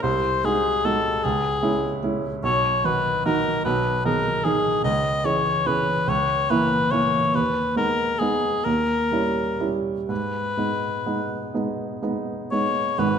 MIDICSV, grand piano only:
0, 0, Header, 1, 2, 480
1, 0, Start_track
1, 0, Key_signature, 5, "minor"
1, 0, Tempo, 803213
1, 16, Time_signature, 6, 3, 24, 8
1, 2895, Tempo, 831025
1, 4335, Tempo, 868307
1, 4815, Tempo, 921659
1, 5295, Tempo, 967742
1, 7309, End_track
2, 0, Start_track
2, 0, Title_t, "Grand piano"
2, 0, Program_c, 0, 0
2, 0, Control_c, 0, 64, 127
2, 20, Note_on_c, 0, 36, 55
2, 24, Control_c, 0, 64, 0
2, 117, Control_c, 0, 64, 127
2, 254, Note_off_c, 0, 36, 0
2, 264, Note_on_c, 0, 56, 36
2, 266, Note_on_c, 0, 63, 37
2, 272, Note_on_c, 0, 66, 39
2, 479, Note_off_c, 0, 56, 0
2, 480, Note_off_c, 0, 63, 0
2, 484, Note_off_c, 0, 66, 0
2, 507, Note_on_c, 0, 56, 38
2, 507, Note_on_c, 0, 63, 38
2, 508, Note_on_c, 0, 66, 37
2, 717, Note_off_c, 0, 56, 0
2, 717, Note_off_c, 0, 63, 0
2, 718, Note_off_c, 0, 66, 0
2, 745, Control_c, 0, 64, 0
2, 747, Note_on_c, 0, 37, 51
2, 821, Control_c, 0, 64, 127
2, 966, Note_off_c, 0, 37, 0
2, 972, Note_on_c, 0, 56, 43
2, 973, Note_on_c, 0, 64, 51
2, 975, Note_on_c, 0, 61, 45
2, 1182, Note_off_c, 0, 56, 0
2, 1183, Note_off_c, 0, 64, 0
2, 1184, Note_off_c, 0, 61, 0
2, 1215, Note_on_c, 0, 56, 40
2, 1218, Note_on_c, 0, 61, 44
2, 1220, Note_on_c, 0, 64, 49
2, 1432, Note_off_c, 0, 56, 0
2, 1433, Note_off_c, 0, 61, 0
2, 1434, Note_off_c, 0, 64, 0
2, 1454, Note_on_c, 0, 35, 53
2, 1461, Control_c, 0, 64, 0
2, 1560, Control_c, 0, 64, 127
2, 1692, Note_off_c, 0, 35, 0
2, 1698, Note_on_c, 0, 51, 35
2, 1704, Note_on_c, 0, 63, 35
2, 1704, Note_on_c, 0, 66, 37
2, 1918, Note_off_c, 0, 51, 0
2, 1921, Note_off_c, 0, 63, 0
2, 1921, Note_off_c, 0, 66, 0
2, 1945, Note_on_c, 0, 51, 40
2, 1948, Note_on_c, 0, 63, 43
2, 1949, Note_on_c, 0, 66, 41
2, 2160, Note_off_c, 0, 51, 0
2, 2162, Note_off_c, 0, 63, 0
2, 2162, Note_off_c, 0, 66, 0
2, 2186, Note_on_c, 0, 35, 59
2, 2191, Control_c, 0, 64, 0
2, 2267, Control_c, 0, 64, 127
2, 2415, Note_off_c, 0, 35, 0
2, 2422, Note_on_c, 0, 51, 41
2, 2422, Note_on_c, 0, 63, 40
2, 2427, Note_on_c, 0, 68, 46
2, 2635, Note_off_c, 0, 51, 0
2, 2635, Note_off_c, 0, 63, 0
2, 2637, Note_off_c, 0, 68, 0
2, 2659, Note_on_c, 0, 51, 42
2, 2660, Note_on_c, 0, 63, 42
2, 2663, Note_on_c, 0, 68, 49
2, 2872, Note_off_c, 0, 51, 0
2, 2872, Note_off_c, 0, 63, 0
2, 2874, Note_off_c, 0, 68, 0
2, 2895, Note_on_c, 0, 37, 55
2, 2905, Control_c, 0, 64, 0
2, 2991, Control_c, 0, 64, 127
2, 3123, Note_off_c, 0, 37, 0
2, 3123, Note_on_c, 0, 52, 31
2, 3125, Note_on_c, 0, 61, 34
2, 3129, Note_on_c, 0, 68, 42
2, 3343, Note_off_c, 0, 52, 0
2, 3344, Note_off_c, 0, 61, 0
2, 3346, Note_off_c, 0, 68, 0
2, 3366, Note_on_c, 0, 52, 39
2, 3367, Note_on_c, 0, 61, 38
2, 3371, Note_on_c, 0, 68, 38
2, 3584, Note_off_c, 0, 52, 0
2, 3585, Note_off_c, 0, 61, 0
2, 3587, Note_off_c, 0, 68, 0
2, 3604, Note_on_c, 0, 37, 50
2, 3617, Control_c, 0, 64, 0
2, 3697, Control_c, 0, 64, 127
2, 3839, Note_off_c, 0, 37, 0
2, 3851, Note_on_c, 0, 58, 44
2, 3852, Note_on_c, 0, 52, 44
2, 3856, Note_on_c, 0, 64, 44
2, 4068, Note_off_c, 0, 58, 0
2, 4069, Note_off_c, 0, 52, 0
2, 4071, Note_off_c, 0, 64, 0
2, 4092, Note_on_c, 0, 52, 42
2, 4095, Note_on_c, 0, 58, 44
2, 4095, Note_on_c, 0, 64, 45
2, 4312, Note_off_c, 0, 52, 0
2, 4313, Note_off_c, 0, 58, 0
2, 4313, Note_off_c, 0, 64, 0
2, 4337, Note_on_c, 0, 39, 49
2, 4344, Control_c, 0, 64, 0
2, 4419, Control_c, 0, 64, 127
2, 4565, Note_off_c, 0, 39, 0
2, 4569, Note_on_c, 0, 56, 32
2, 4572, Note_on_c, 0, 59, 35
2, 4574, Note_on_c, 0, 63, 32
2, 4791, Note_off_c, 0, 56, 0
2, 4792, Note_off_c, 0, 59, 0
2, 4794, Note_off_c, 0, 63, 0
2, 4816, Note_on_c, 0, 56, 30
2, 4818, Note_on_c, 0, 63, 37
2, 4819, Note_on_c, 0, 59, 36
2, 5031, Note_off_c, 0, 56, 0
2, 5032, Note_off_c, 0, 59, 0
2, 5032, Note_off_c, 0, 63, 0
2, 5051, Note_on_c, 0, 39, 47
2, 5062, Control_c, 0, 64, 0
2, 5143, Control_c, 0, 64, 127
2, 5287, Note_off_c, 0, 39, 0
2, 5290, Note_on_c, 0, 55, 39
2, 5293, Note_on_c, 0, 61, 37
2, 5295, Note_on_c, 0, 64, 41
2, 5510, Note_off_c, 0, 55, 0
2, 5511, Note_off_c, 0, 61, 0
2, 5512, Note_off_c, 0, 64, 0
2, 5529, Note_on_c, 0, 55, 38
2, 5529, Note_on_c, 0, 61, 35
2, 5532, Note_on_c, 0, 64, 40
2, 5755, Note_off_c, 0, 55, 0
2, 5755, Note_off_c, 0, 61, 0
2, 5757, Note_off_c, 0, 64, 0
2, 5771, Note_on_c, 0, 44, 45
2, 5787, Control_c, 0, 64, 0
2, 5873, Control_c, 0, 64, 127
2, 6010, Note_off_c, 0, 44, 0
2, 6012, Note_on_c, 0, 56, 29
2, 6016, Note_on_c, 0, 63, 33
2, 6017, Note_on_c, 0, 59, 29
2, 6236, Note_off_c, 0, 56, 0
2, 6238, Note_off_c, 0, 59, 0
2, 6238, Note_off_c, 0, 63, 0
2, 6254, Note_on_c, 0, 56, 27
2, 6255, Note_on_c, 0, 59, 32
2, 6258, Note_on_c, 0, 63, 32
2, 6475, Note_off_c, 0, 56, 0
2, 6476, Note_off_c, 0, 59, 0
2, 6477, Note_off_c, 0, 63, 0
2, 6493, Note_on_c, 0, 59, 33
2, 6494, Note_on_c, 0, 56, 36
2, 6498, Note_on_c, 0, 63, 35
2, 6716, Note_off_c, 0, 59, 0
2, 6717, Note_off_c, 0, 56, 0
2, 6719, Note_off_c, 0, 63, 0
2, 6731, Note_on_c, 0, 56, 35
2, 6735, Note_on_c, 0, 59, 35
2, 6737, Note_on_c, 0, 63, 39
2, 6962, Note_off_c, 0, 56, 0
2, 6963, Note_off_c, 0, 59, 0
2, 6964, Note_off_c, 0, 63, 0
2, 6978, Note_on_c, 0, 56, 34
2, 6980, Note_on_c, 0, 59, 33
2, 6983, Note_on_c, 0, 63, 36
2, 7197, Note_off_c, 0, 56, 0
2, 7198, Note_off_c, 0, 59, 0
2, 7200, Note_off_c, 0, 63, 0
2, 7208, Note_on_c, 0, 32, 49
2, 7212, Note_on_c, 0, 44, 55
2, 7228, Control_c, 0, 64, 0
2, 7309, Note_off_c, 0, 32, 0
2, 7309, Note_off_c, 0, 44, 0
2, 7309, End_track
0, 0, End_of_file